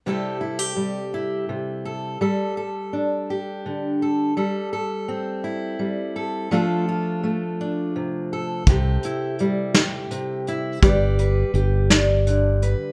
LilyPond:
<<
  \new Staff \with { instrumentName = "Steel-string acoustic guitar" } { \time 6/8 \key c \major \tempo 4. = 56 << { <g e' g' a'>8 e'16 g'8. e'4 a'8 | a'8 a'4 g'4 a'8 | a'8 a'4 e'4 a'8 | <a d' f' a'>8 f'4 d'4 a'8 |
g'8 e'4 g'4 e'8 | <g' b' d''>8 b'4 d''4 b'8 | } \\ { c4 g4 c4 | g4 d'4 d4 | g4 c'4 g4 | f4 a4 c4 |
c4 g4 c4 | g4 g'4 d4 | } >> }
  \new Staff \with { instrumentName = "Fingered electric bass" } { \clef bass \time 6/8 \key c \major r2. | r2. | r2. | r2. |
c,8 r2 r8 | g,,4 g,,2 | }
  \new DrumStaff \with { instrumentName = "Drums" } \drummode { \time 6/8 r4. r4. | r4. r4. | r4. r4. | r4. r4. |
<hh bd>8 hh8 hh8 <hh sn>8 hh8 hh8 | <hh bd>8 hh8 hh8 <hh sn>8 hh8 hh8 | }
>>